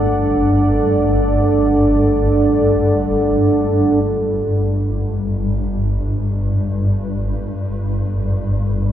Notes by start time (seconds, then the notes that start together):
Already playing: G1 G2 D4 A4 D5 F#5
4.03 G1 G2 G3
7.12 A#4